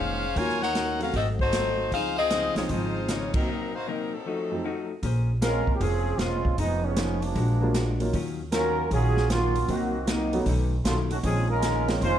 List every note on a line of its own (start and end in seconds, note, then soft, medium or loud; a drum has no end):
0.00 0.32 F1 medium
0.00 0.24 A#2 medium
0.00 0.25 D#3 medium
0.00 0.25 G#3 medium
0.00 0.25 C#4 medium
0.00 0.37 C#4 medium
0.00 0.37 G#4 medium
0.00 0.37 C5 medium
0.00 0.37 F5 loud
0.36 1.10 D#2 medium
0.36 0.63 D#3 medium
0.36 0.59 F#3 medium
0.36 0.59 A#3 soft
0.36 0.64 A#3 soft
0.36 0.60 C#4 soft
0.36 0.64 C#4 soft
0.36 0.60 F4 medium
0.36 0.62 F4 medium
0.36 0.64 F#4 soft
0.36 0.62 A#4 medium
0.36 0.62 C#5 medium
0.36 0.62 G#5 loud
0.36 kick soft
0.36 open hi-hat soft
0.49 snare soft
0.62 0.98 D#4 medium
0.62 0.98 A#4 medium
0.62 0.98 C#5 loud
0.62 0.98 F#5 loud
0.62 snare soft
0.75 1.03 D#3 medium
0.75 1.03 A#3 medium
0.75 1.03 C#4 medium
0.75 1.03 F#4 medium
0.75 snare medium
0.75 closed hi-hat medium
1.00 1.12 F#3 medium
1.00 1.12 A3 medium
1.00 1.13 C4 medium
1.00 1.15 C#4 medium
1.00 1.13 F#4 medium
1.00 1.14 F#4 medium
1.00 1.15 A#4 medium
1.00 1.15 F5 medium
1.00 open hi-hat soft
1.14 1.88 G#1 medium
1.14 1.41 G#2 soft
1.14 1.42 F#3 soft
1.14 1.42 A3 medium
1.14 1.27 C4 medium
1.14 1.42 C4 medium
1.14 1.27 F#4 medium
1.14 1.27 A4 medium
1.14 1.27 D#5 medium
1.14 kick soft
1.14 open hi-hat soft
1.39 1.89 A3 medium
1.39 1.89 D#4 medium
1.39 1.89 F#4 medium
1.39 1.89 C5 loud
1.39 kick medium
1.53 1.80 G#2 medium
1.53 1.80 F#3 medium
1.53 1.81 A3 medium
1.53 1.81 C4 medium
1.53 snare medium
1.53 closed hi-hat medium
1.91 2.52 C#2 medium
1.91 2.19 C#3 soft
1.91 2.19 F3 soft
1.91 2.20 C4 soft
1.91 2.16 D#4 medium
1.91 2.20 D#4 medium
1.91 2.17 G#4 medium
1.91 2.16 C5 medium
1.91 2.16 F5 loud
1.91 kick soft
1.91 open hi-hat medium
2.18 2.54 C4 medium
2.18 2.54 F4 medium
2.18 2.54 G#4 medium
2.18 2.54 D#5 loud
2.30 2.58 C#3 medium
2.30 2.58 F3 medium
2.30 2.58 C4 medium
2.30 2.59 D#4 medium
2.30 snare medium
2.30 closed hi-hat medium
2.55 2.68 C2 medium
2.55 3.06 F3 medium
2.55 3.06 G#3 medium
2.55 2.69 G#3 medium
2.55 3.07 C4 medium
2.55 2.69 D#4 medium
2.55 3.07 D#4 medium
2.55 2.69 F4 medium
2.55 2.69 C#5 medium
2.55 snare medium
2.55 open hi-hat soft
2.69 3.43 G#1 medium
2.69 2.96 C#3 medium
2.69 2.97 F3 medium
2.69 3.08 G#3 medium
2.69 2.97 C4 medium
2.69 3.08 D#4 medium
2.69 2.97 D#4 medium
2.69 3.08 F4 medium
2.69 3.09 C5 medium
2.69 kick soft
2.69 open hi-hat soft
3.08 3.35 C#3 medium
3.08 3.36 F3 medium
3.08 3.34 G#3 medium
3.08 3.36 C4 medium
3.08 3.34 D#4 medium
3.08 3.36 D#4 medium
3.08 3.35 F4 medium
3.08 3.35 C#5 medium
3.08 snare medium
3.08 closed hi-hat medium
3.34 3.46 F#3 medium
3.34 3.71 F#3 medium
3.34 3.47 A#3 medium
3.34 3.71 C4 medium
3.34 3.47 C4 medium
3.34 3.71 D#4 medium
3.34 3.47 D#4 medium
3.34 3.71 A#4 medium
3.34 kick medium
3.34 ride medium
3.48 3.74 C3 soft
3.48 3.75 F#3 soft
3.48 3.75 A#3 soft
3.48 3.75 D#4 soft
3.74 3.87 A#3 medium
3.74 3.87 D#4 medium
3.74 3.87 F#4 medium
3.74 3.87 C5 medium
3.87 4.14 C3 medium
3.87 4.14 F#3 medium
3.87 4.12 F#3 medium
3.87 4.14 A#3 medium
3.87 4.12 C4 medium
3.87 4.12 D#4 medium
3.87 4.15 D#4 medium
3.87 4.13 A#4 medium
4.13 4.90 F#3 medium
4.13 4.90 C4 medium
4.13 4.91 D#4 medium
4.13 4.90 A4 medium
4.26 4.53 F3 soft
4.26 4.53 A3 medium
4.26 4.53 D#4 medium
4.26 4.53 F#4 medium
4.51 4.63 F2 medium
4.51 4.63 F#3 medium
4.51 4.63 A3 medium
4.51 4.64 C4 soft
4.51 4.64 D#4 medium
4.64 4.91 F3 medium
4.64 4.92 A3 medium
4.64 4.92 D#4 medium
4.64 4.92 F#4 medium
5.03 5.63 A#1 medium
5.03 5.30 A#3 medium
5.03 5.31 C#4 medium
5.03 5.31 G#4 medium
5.03 5.31 C5 medium
5.03 kick soft
5.03 open hi-hat soft
5.41 6.02 G#3 soft
5.41 5.74 G#3 medium
5.41 5.69 A#3 medium
5.41 6.02 A#3 soft
5.41 6.02 C4 soft
5.41 5.69 C#4 medium
5.41 5.75 C#4 medium
5.41 6.02 C#4 soft
5.41 5.74 F4 medium
5.41 6.02 F4 medium
5.41 5.69 G#4 medium
5.41 5.74 A#4 loud
5.41 5.69 C5 medium
5.41 snare medium
5.41 closed hi-hat medium
5.67 muted upright bass stroke soft
5.67 kick medium
5.75 5.81 G4 medium
5.81 6.17 F1 loud
5.81 6.20 F3 medium
5.81 6.08 A#3 medium
5.81 6.19 C4 medium
5.81 6.19 C#4 medium
5.81 6.08 C#4 medium
5.81 6.20 G#4 medium
5.81 6.09 G#4 medium
5.81 6.09 C5 medium
5.81 kick soft
5.81 open hi-hat medium
6.18 6.55 E1 medium
6.18 6.57 G#3 medium
6.18 6.46 A#3 medium
6.18 6.59 C4 medium
6.18 6.47 C#4 medium
6.18 6.59 C#4 medium
6.18 6.59 F4 medium
6.18 6.47 G#4 medium
6.18 6.47 C5 medium
6.18 snare medium
6.18 closed hi-hat medium
6.45 kick medium
6.58 7.32 F1 medium
6.58 6.85 F3 soft
6.58 6.82 F3 medium
6.58 6.82 G#3 medium
6.58 6.85 B3 soft
6.58 6.82 B3 medium
6.58 6.82 D#4 medium
6.58 6.86 D#4 soft
6.58 6.86 G#4 soft
6.58 kick soft
6.58 open hi-hat medium
6.84 7.21 F3 medium
6.84 7.22 G#3 medium
6.84 7.23 B3 medium
6.84 7.23 C#4 medium
6.96 7.24 F3 soft
6.96 7.24 B3 medium
6.96 7.24 D#4 medium
6.96 7.24 G#4 medium
6.96 snare medium
6.96 closed hi-hat medium
7.22 8.00 F3 medium
7.22 8.01 G#3 medium
7.22 8.00 A#3 medium
7.22 8.00 D4 medium
7.22 open hi-hat soft
7.35 8.09 A#1 medium
7.35 7.63 A#2 medium
7.35 7.63 G#3 medium
7.35 7.64 D4 medium
7.35 7.64 F#4 medium
7.35 kick soft
7.35 open hi-hat soft
7.61 7.73 F#3 medium
7.61 7.73 G#3 medium
7.61 7.74 A#3 medium
7.61 7.74 D4 medium
7.61 7.74 F4 medium
7.74 8.01 A#2 medium
7.74 8.01 G#3 medium
7.74 8.02 D4 medium
7.74 8.02 F#4 medium
7.74 snare medium
7.74 closed hi-hat medium
8.00 8.12 F#3 medium
8.00 8.12 A#3 medium
8.00 8.13 C#4 medium
8.00 8.13 D#4 medium
8.00 8.13 F4 medium
8.00 open hi-hat soft
8.13 8.87 D#2 medium
8.13 8.40 D#3 soft
8.13 8.41 F#3 medium
8.13 8.41 C#4 medium
8.13 8.41 F4 medium
8.13 kick soft
8.13 open hi-hat medium
8.52 8.80 D#3 medium
8.52 8.88 F#3 medium
8.52 8.80 F#3 medium
8.52 8.89 C#4 loud
8.52 8.80 C#4 medium
8.52 8.88 F4 medium
8.52 8.80 F4 medium
8.52 8.89 A#4 loud
8.52 snare medium
8.52 closed hi-hat medium
8.91 9.65 A#1 loud
8.91 9.19 D#3 medium
8.91 9.30 F#3 medium
8.91 9.19 F#3 medium
8.91 9.30 C#4 medium
8.91 9.19 C#4 medium
8.91 9.30 F4 loud
8.91 9.20 F4 medium
8.91 9.31 G#4 loud
8.91 kick soft
8.91 open hi-hat soft
9.17 snare soft
9.30 9.57 D#3 medium
9.30 9.57 F#3 medium
9.30 9.67 F#3 medium
9.30 9.67 A#3 medium
9.30 9.67 C#4 medium
9.30 9.58 C#4 medium
9.30 9.67 F4 medium
9.30 9.58 F4 medium
9.30 snare medium
9.30 closed hi-hat medium
9.56 open hi-hat soft
9.68 10.42 C2 medium
9.68 9.96 C3 soft
9.68 10.08 D#3 medium
9.68 9.91 F#3 medium
9.68 9.96 F#3 soft
9.68 9.92 A#3 medium
9.68 10.08 A#3 medium
9.68 9.96 A#3 soft
9.68 9.92 C4 medium
9.68 10.08 C4 medium
9.68 9.92 D#4 medium
9.68 9.97 D#4 soft
9.68 10.08 F#4 medium
9.68 9.92 F#4 medium
9.68 kick soft
9.68 open hi-hat medium
10.07 10.35 C3 medium
10.07 10.35 F#3 medium
10.07 10.47 F#3 medium
10.07 10.35 A#3 medium
10.07 10.47 A#3 medium
10.07 10.47 C4 medium
10.07 10.35 D#4 medium
10.07 10.47 D#4 medium
10.07 snare medium
10.07 closed hi-hat medium
10.33 10.45 F#3 medium
10.33 10.45 A3 medium
10.33 10.45 B3 medium
10.33 10.45 C#4 medium
10.33 10.46 F#4 medium
10.33 open hi-hat soft
10.46 10.82 B1 medium
10.46 10.74 B2 soft
10.46 10.74 D#3 medium
10.46 10.74 A3 medium
10.46 10.75 C#4 medium
10.46 kick soft
10.46 open hi-hat soft
10.85 11.21 B1 medium
10.85 11.12 B2 medium
10.85 11.13 D#3 medium
10.85 10.96 F#3 medium
10.85 10.97 A3 medium
10.85 11.13 A3 medium
10.85 10.96 C#4 medium
10.85 11.13 C#4 medium
10.85 10.96 F4 medium
10.85 snare medium
10.85 closed hi-hat medium
11.11 11.17 D#3 medium
11.11 11.17 A3 medium
11.11 11.17 C#4 medium
11.11 11.17 F#4 medium
11.11 open hi-hat soft
11.23 11.97 A#1 medium
11.23 11.51 A#2 soft
11.23 11.52 D#3 soft
11.23 11.46 F3 medium
11.23 11.48 F3 medium
11.23 11.46 G#3 soft
11.23 11.52 G#3 soft
11.23 11.47 C4 soft
11.23 11.48 C4 medium
11.23 11.48 C#4 medium
11.23 11.47 C#4 soft
11.23 11.52 C#4 medium
11.23 11.47 D#4 medium
11.23 11.48 G#4 medium
11.23 kick soft
11.23 open hi-hat medium
11.50 11.98 G#3 medium
11.50 11.98 C#4 medium
11.50 11.98 F4 medium
11.50 11.98 A#4 loud
11.63 11.90 A#2 medium
11.63 11.90 D#3 medium
11.63 11.91 G#3 medium
11.63 11.91 C#4 medium
11.63 snare medium
11.63 closed hi-hat medium
11.88 12.00 F3 medium
11.88 12.00 G#3 medium
11.88 12.00 C4 medium
11.88 12.01 C#4 medium
11.88 12.01 F4 medium
11.88 snare medium
11.88 open hi-hat soft
12.01 12.19 F1 medium
12.01 12.19 A#2 medium
12.01 12.19 D#3 medium
12.01 12.19 G#3 loud
12.01 12.19 G#3 soft
12.01 12.19 C#4 loud
12.01 12.19 C#4 medium
12.01 12.19 F4 medium
12.01 12.19 C5 loud
12.01 kick soft
12.01 open hi-hat soft